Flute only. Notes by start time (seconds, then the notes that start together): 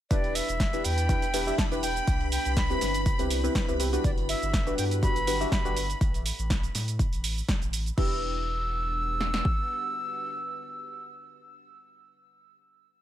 0.11 D5
0.35 E5
0.85 G5
1.58 A5
1.83 G5
2.32 G5
2.57 B5
4.04 D5
4.29 E5
4.78 G5
5.03 B5
5.52 B5
7.98 E6